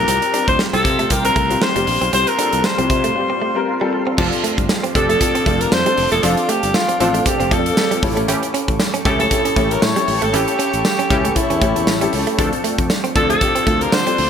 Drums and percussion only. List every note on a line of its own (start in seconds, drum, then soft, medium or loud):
0.08 closed hi-hat medium
0.22 closed hi-hat soft
0.34 closed hi-hat medium
0.48 kick medium
0.48 closed hi-hat soft
0.59 snare loud
0.73 closed hi-hat medium
0.85 kick medium
0.85 closed hi-hat medium
0.99 closed hi-hat medium
1.10 kick medium
1.10 closed hi-hat loud
1.25 closed hi-hat medium
1.36 kick medium
1.36 closed hi-hat medium
1.50 closed hi-hat soft
1.62 snare loud
1.76 closed hi-hat medium
1.87 open hi-hat medium
2.02 closed hi-hat medium
2.13 closed hi-hat loud
2.27 closed hi-hat soft
2.39 closed hi-hat medium
2.53 closed hi-hat medium
2.64 snare loud
2.64 tambourine medium
2.78 closed hi-hat medium
2.90 kick medium
2.90 closed hi-hat medium
3.04 closed hi-hat soft
4.18 kick loud
4.18 crash loud
4.32 closed hi-hat soft
4.44 closed hi-hat medium
4.58 kick medium
4.58 closed hi-hat soft
4.69 snare loud
4.69 tambourine medium
4.84 closed hi-hat medium
4.95 kick medium
4.95 closed hi-hat medium
5.10 closed hi-hat medium
5.21 kick medium
5.21 closed hi-hat loud
5.35 closed hi-hat medium
5.46 kick medium
5.46 closed hi-hat medium
5.61 closed hi-hat soft
5.72 snare loud
5.72 tambourine medium
5.86 closed hi-hat medium
5.97 open hi-hat medium
6.12 closed hi-hat medium
6.23 closed hi-hat loud
6.37 closed hi-hat soft
6.49 closed hi-hat medium
6.63 closed hi-hat medium
6.74 snare loud
6.74 tambourine medium
6.89 closed hi-hat medium
7.00 closed hi-hat medium
7.14 closed hi-hat medium
7.26 kick medium
7.26 closed hi-hat loud
7.40 closed hi-hat medium
7.51 kick medium
7.51 closed hi-hat medium
7.66 closed hi-hat medium
7.77 snare loud
7.77 tambourine medium
7.91 closed hi-hat medium
8.03 kick loud
8.03 open hi-hat medium
8.17 closed hi-hat medium
8.28 closed hi-hat loud
8.43 closed hi-hat soft
8.54 closed hi-hat medium
8.68 kick medium
8.68 closed hi-hat medium
8.80 snare loud
8.80 tambourine medium
8.94 closed hi-hat medium
9.05 kick medium
9.05 closed hi-hat medium
9.20 closed hi-hat medium
9.31 kick medium
9.31 closed hi-hat loud
9.45 closed hi-hat medium
9.56 kick medium
9.56 closed hi-hat medium
9.71 closed hi-hat medium
9.82 snare loud
9.82 tambourine medium
9.96 closed hi-hat medium
10.08 open hi-hat medium
10.22 closed hi-hat medium
10.34 closed hi-hat medium
10.48 closed hi-hat soft
10.59 closed hi-hat medium
10.73 closed hi-hat soft
10.85 snare loud
10.85 tambourine medium
10.99 closed hi-hat medium
11.10 kick medium
11.10 closed hi-hat medium
11.25 closed hi-hat medium
11.36 kick medium
11.36 closed hi-hat loud
11.50 closed hi-hat medium
11.62 kick medium
11.62 closed hi-hat medium
11.76 closed hi-hat medium
11.87 snare loud
11.87 tambourine medium
12.01 closed hi-hat medium
12.13 open hi-hat medium
12.27 closed hi-hat medium
12.39 kick loud
12.39 closed hi-hat loud
12.53 closed hi-hat soft
12.64 closed hi-hat medium
12.78 kick medium
12.78 closed hi-hat medium
12.90 snare loud
12.90 tambourine medium
13.04 closed hi-hat medium
13.16 kick loud
13.16 closed hi-hat medium
13.30 closed hi-hat medium
13.41 kick medium
13.41 closed hi-hat loud
13.56 closed hi-hat medium
13.67 kick medium
13.67 closed hi-hat medium
13.81 closed hi-hat soft
13.92 snare loud
13.92 tambourine medium
14.07 closed hi-hat medium
14.18 open hi-hat medium